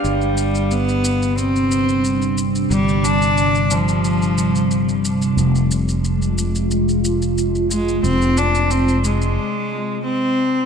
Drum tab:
SH |xxxxxxxxxxxxxxxx|xxxxxxxxxxxxxxxx|xxxxxxxxxxxxxxxx|xxxxxxxx--------|